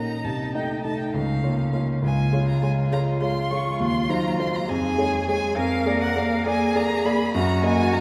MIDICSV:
0, 0, Header, 1, 4, 480
1, 0, Start_track
1, 0, Tempo, 591716
1, 203, Time_signature, 6, 3, 24, 8
1, 6494, End_track
2, 0, Start_track
2, 0, Title_t, "Violin"
2, 0, Program_c, 0, 40
2, 0, Note_on_c, 0, 82, 96
2, 195, Note_on_c, 0, 81, 88
2, 207, Note_off_c, 0, 82, 0
2, 440, Note_off_c, 0, 81, 0
2, 445, Note_on_c, 0, 79, 87
2, 680, Note_off_c, 0, 79, 0
2, 684, Note_on_c, 0, 81, 92
2, 803, Note_off_c, 0, 81, 0
2, 813, Note_on_c, 0, 79, 80
2, 924, Note_off_c, 0, 79, 0
2, 928, Note_on_c, 0, 77, 94
2, 1395, Note_off_c, 0, 77, 0
2, 1400, Note_on_c, 0, 77, 91
2, 1465, Note_off_c, 0, 77, 0
2, 1653, Note_on_c, 0, 80, 105
2, 2004, Note_off_c, 0, 80, 0
2, 2012, Note_on_c, 0, 82, 92
2, 2124, Note_off_c, 0, 82, 0
2, 2129, Note_on_c, 0, 80, 100
2, 2194, Note_off_c, 0, 80, 0
2, 2370, Note_on_c, 0, 82, 103
2, 2435, Note_off_c, 0, 82, 0
2, 2602, Note_on_c, 0, 84, 112
2, 2845, Note_on_c, 0, 85, 108
2, 2857, Note_off_c, 0, 84, 0
2, 3083, Note_off_c, 0, 85, 0
2, 3093, Note_on_c, 0, 84, 116
2, 3326, Note_on_c, 0, 82, 118
2, 3338, Note_off_c, 0, 84, 0
2, 3563, Note_off_c, 0, 82, 0
2, 3568, Note_on_c, 0, 84, 118
2, 3696, Note_on_c, 0, 82, 106
2, 3708, Note_off_c, 0, 84, 0
2, 3808, Note_on_c, 0, 80, 125
2, 3820, Note_off_c, 0, 82, 0
2, 4284, Note_off_c, 0, 80, 0
2, 4288, Note_on_c, 0, 80, 119
2, 4518, Note_off_c, 0, 80, 0
2, 4522, Note_on_c, 0, 77, 127
2, 4872, Note_off_c, 0, 77, 0
2, 4880, Note_on_c, 0, 78, 117
2, 5009, Note_on_c, 0, 77, 118
2, 5022, Note_off_c, 0, 78, 0
2, 5234, Note_off_c, 0, 77, 0
2, 5239, Note_on_c, 0, 80, 127
2, 5485, Note_on_c, 0, 82, 127
2, 5497, Note_off_c, 0, 80, 0
2, 5718, Note_on_c, 0, 83, 127
2, 5731, Note_off_c, 0, 82, 0
2, 5949, Note_off_c, 0, 83, 0
2, 5954, Note_on_c, 0, 82, 127
2, 6193, Note_off_c, 0, 82, 0
2, 6199, Note_on_c, 0, 80, 125
2, 6433, Note_on_c, 0, 82, 127
2, 6445, Note_off_c, 0, 80, 0
2, 6494, Note_off_c, 0, 82, 0
2, 6494, End_track
3, 0, Start_track
3, 0, Title_t, "Cello"
3, 0, Program_c, 1, 42
3, 0, Note_on_c, 1, 63, 78
3, 928, Note_on_c, 1, 61, 61
3, 940, Note_off_c, 1, 63, 0
3, 1648, Note_off_c, 1, 61, 0
3, 1654, Note_on_c, 1, 65, 85
3, 3772, Note_off_c, 1, 65, 0
3, 3800, Note_on_c, 1, 68, 99
3, 4518, Note_on_c, 1, 70, 106
3, 4530, Note_off_c, 1, 68, 0
3, 5231, Note_off_c, 1, 70, 0
3, 5236, Note_on_c, 1, 68, 105
3, 5944, Note_off_c, 1, 68, 0
3, 5966, Note_on_c, 1, 66, 110
3, 6494, Note_off_c, 1, 66, 0
3, 6494, End_track
4, 0, Start_track
4, 0, Title_t, "Grand piano"
4, 0, Program_c, 2, 0
4, 0, Control_c, 2, 64, 127
4, 0, Note_on_c, 2, 34, 55
4, 0, Note_on_c, 2, 58, 48
4, 0, Note_on_c, 2, 61, 45
4, 0, Note_on_c, 2, 70, 50
4, 180, Note_off_c, 2, 61, 0
4, 181, Note_off_c, 2, 58, 0
4, 184, Note_off_c, 2, 70, 0
4, 196, Note_on_c, 2, 36, 61
4, 219, Control_c, 2, 64, 0
4, 222, Note_off_c, 2, 34, 0
4, 345, Control_c, 2, 64, 127
4, 433, Note_off_c, 2, 36, 0
4, 442, Note_on_c, 2, 57, 52
4, 444, Note_on_c, 2, 63, 52
4, 447, Note_on_c, 2, 75, 58
4, 660, Note_off_c, 2, 57, 0
4, 660, Note_off_c, 2, 63, 0
4, 662, Note_off_c, 2, 75, 0
4, 683, Note_on_c, 2, 57, 43
4, 687, Note_on_c, 2, 63, 42
4, 688, Note_on_c, 2, 75, 44
4, 900, Note_off_c, 2, 57, 0
4, 903, Note_off_c, 2, 63, 0
4, 903, Note_off_c, 2, 75, 0
4, 922, Note_on_c, 2, 37, 68
4, 941, Control_c, 2, 64, 0
4, 1096, Control_c, 2, 64, 127
4, 1157, Note_off_c, 2, 37, 0
4, 1160, Note_on_c, 2, 65, 50
4, 1161, Note_on_c, 2, 58, 51
4, 1167, Note_on_c, 2, 73, 61
4, 1378, Note_off_c, 2, 65, 0
4, 1379, Note_off_c, 2, 58, 0
4, 1382, Note_off_c, 2, 73, 0
4, 1402, Note_on_c, 2, 58, 50
4, 1405, Note_on_c, 2, 65, 49
4, 1405, Note_on_c, 2, 73, 54
4, 1621, Note_off_c, 2, 58, 0
4, 1622, Note_off_c, 2, 65, 0
4, 1622, Note_off_c, 2, 73, 0
4, 1638, Note_on_c, 2, 37, 71
4, 1661, Control_c, 2, 64, 0
4, 1790, Control_c, 2, 64, 127
4, 1876, Note_off_c, 2, 37, 0
4, 1886, Note_on_c, 2, 56, 57
4, 1891, Note_on_c, 2, 65, 55
4, 1894, Note_on_c, 2, 73, 64
4, 2103, Note_off_c, 2, 56, 0
4, 2105, Note_off_c, 2, 65, 0
4, 2107, Note_off_c, 2, 73, 0
4, 2131, Note_on_c, 2, 56, 52
4, 2135, Note_on_c, 2, 65, 51
4, 2137, Note_on_c, 2, 73, 51
4, 2345, Note_off_c, 2, 56, 0
4, 2347, Note_off_c, 2, 65, 0
4, 2348, Note_off_c, 2, 73, 0
4, 2369, Note_on_c, 2, 56, 56
4, 2371, Note_on_c, 2, 65, 53
4, 2373, Note_on_c, 2, 73, 63
4, 2583, Note_off_c, 2, 56, 0
4, 2584, Note_off_c, 2, 65, 0
4, 2585, Note_off_c, 2, 73, 0
4, 2609, Note_on_c, 2, 56, 55
4, 2611, Note_on_c, 2, 65, 56
4, 2617, Note_on_c, 2, 73, 65
4, 2822, Note_off_c, 2, 56, 0
4, 2824, Note_off_c, 2, 65, 0
4, 2827, Note_off_c, 2, 73, 0
4, 2849, Note_on_c, 2, 56, 62
4, 2849, Note_on_c, 2, 65, 61
4, 2854, Note_on_c, 2, 73, 61
4, 3062, Note_off_c, 2, 56, 0
4, 3062, Note_off_c, 2, 65, 0
4, 3065, Note_off_c, 2, 73, 0
4, 3083, Note_on_c, 2, 39, 84
4, 3097, Control_c, 2, 64, 0
4, 3223, Control_c, 2, 64, 127
4, 3315, Note_off_c, 2, 39, 0
4, 3322, Note_on_c, 2, 54, 67
4, 3323, Note_on_c, 2, 63, 65
4, 3325, Note_on_c, 2, 72, 66
4, 3537, Note_off_c, 2, 54, 0
4, 3538, Note_off_c, 2, 63, 0
4, 3539, Note_off_c, 2, 72, 0
4, 3562, Note_on_c, 2, 54, 57
4, 3565, Note_on_c, 2, 63, 59
4, 3568, Note_on_c, 2, 72, 67
4, 3778, Note_off_c, 2, 54, 0
4, 3779, Note_off_c, 2, 63, 0
4, 3781, Note_off_c, 2, 72, 0
4, 3804, Note_on_c, 2, 41, 86
4, 3817, Control_c, 2, 64, 0
4, 3961, Control_c, 2, 64, 127
4, 4036, Note_off_c, 2, 41, 0
4, 4039, Note_on_c, 2, 56, 67
4, 4042, Note_on_c, 2, 68, 69
4, 4045, Note_on_c, 2, 73, 72
4, 4255, Note_off_c, 2, 56, 0
4, 4257, Note_off_c, 2, 68, 0
4, 4258, Note_off_c, 2, 73, 0
4, 4288, Note_on_c, 2, 56, 67
4, 4288, Note_on_c, 2, 68, 67
4, 4290, Note_on_c, 2, 73, 71
4, 4499, Note_off_c, 2, 56, 0
4, 4499, Note_off_c, 2, 68, 0
4, 4500, Note_off_c, 2, 73, 0
4, 4515, Note_on_c, 2, 41, 91
4, 4535, Control_c, 2, 64, 0
4, 4665, Control_c, 2, 64, 127
4, 4749, Note_off_c, 2, 41, 0
4, 4754, Note_on_c, 2, 58, 71
4, 4755, Note_on_c, 2, 68, 69
4, 4764, Note_on_c, 2, 74, 81
4, 4972, Note_off_c, 2, 58, 0
4, 4972, Note_off_c, 2, 68, 0
4, 4977, Note_off_c, 2, 74, 0
4, 4993, Note_on_c, 2, 58, 64
4, 4995, Note_on_c, 2, 68, 63
4, 5000, Note_on_c, 2, 74, 74
4, 5212, Note_off_c, 2, 58, 0
4, 5214, Note_off_c, 2, 68, 0
4, 5216, Note_off_c, 2, 74, 0
4, 5235, Note_on_c, 2, 58, 73
4, 5238, Note_on_c, 2, 68, 76
4, 5243, Note_on_c, 2, 74, 82
4, 5454, Note_off_c, 2, 58, 0
4, 5455, Note_off_c, 2, 68, 0
4, 5458, Note_off_c, 2, 74, 0
4, 5479, Note_on_c, 2, 58, 73
4, 5480, Note_on_c, 2, 68, 74
4, 5483, Note_on_c, 2, 74, 83
4, 5696, Note_off_c, 2, 58, 0
4, 5696, Note_off_c, 2, 68, 0
4, 5698, Note_off_c, 2, 74, 0
4, 5719, Note_on_c, 2, 58, 75
4, 5722, Note_on_c, 2, 68, 70
4, 5724, Note_on_c, 2, 74, 81
4, 5936, Note_off_c, 2, 58, 0
4, 5937, Note_off_c, 2, 68, 0
4, 5939, Note_off_c, 2, 74, 0
4, 5959, Note_on_c, 2, 42, 101
4, 5974, Control_c, 2, 64, 0
4, 6122, Control_c, 2, 64, 127
4, 6186, Note_on_c, 2, 58, 80
4, 6190, Note_on_c, 2, 66, 74
4, 6193, Note_off_c, 2, 42, 0
4, 6196, Note_on_c, 2, 75, 87
4, 6409, Note_off_c, 2, 58, 0
4, 6411, Note_off_c, 2, 66, 0
4, 6414, Note_off_c, 2, 75, 0
4, 6433, Note_on_c, 2, 58, 70
4, 6435, Note_on_c, 2, 66, 70
4, 6439, Note_on_c, 2, 75, 68
4, 6494, Note_off_c, 2, 58, 0
4, 6494, Note_off_c, 2, 66, 0
4, 6494, Note_off_c, 2, 75, 0
4, 6494, End_track
0, 0, End_of_file